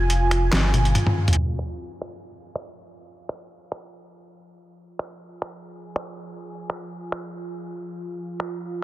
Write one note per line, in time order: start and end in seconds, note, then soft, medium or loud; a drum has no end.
0.00 0.51 F1 loud
0.00 1.36 F4 medium
0.00 1.40 G#5 medium
0.10 closed hi-hat medium
0.31 finger snap medium
0.31 closed hi-hat medium
0.52 0.95 G1 loud
0.52 finger snap medium
0.52 snare loud
0.52 clap medium
0.52 closed hi-hat medium
0.74 closed hi-hat medium
0.74 high tom medium
0.85 closed hi-hat soft
0.95 closed hi-hat medium
0.95 mid tom medium
1.07 mid tom medium
1.28 closed hi-hat medium
1.28 mid tom medium
1.33 closed hi-hat medium
1.37 8.84 F4 medium
1.37 4.80 F5 medium
1.59 finger snap soft
2.02 finger snap soft
2.55 finger snap medium
3.29 finger snap soft
3.72 finger snap soft
4.78 8.21 G#5 medium
4.99 finger snap soft
5.42 finger snap soft
5.96 finger snap medium
6.70 finger snap soft
7.12 finger snap medium
8.19 8.84 F5 medium
8.40 finger snap medium